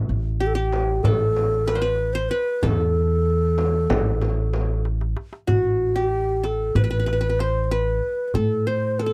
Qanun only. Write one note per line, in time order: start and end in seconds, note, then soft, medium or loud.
0.00 0.36 E5 medium
0.40 0.55 G4 medium
0.55 1.81 G4 medium
1.05 2.22 A4 medium
1.68 1.81 B4 medium
1.75 1.88 C5 medium
1.82 2.21 B4 medium
2.15 2.37 C5 medium
2.31 3.40 B4 medium
2.63 4.81 A4 medium
5.47 6.02 F#4 medium
5.96 7.21 G4 medium
6.44 7.61 A4 medium
6.76 6.83 B4 medium
6.84 6.90 B4 medium
6.91 6.99 B4 medium
7.00 7.06 B4 medium
7.06 7.12 B4 medium
7.13 7.20 B4 medium
7.21 7.29 B4 medium
7.30 7.46 B4 medium
7.40 7.77 C5 medium
7.71 8.73 B4 medium
8.35 8.99 A4 medium
8.67 9.13 C5 medium
8.99 9.06 A4 medium
9.06 9.13 A4 medium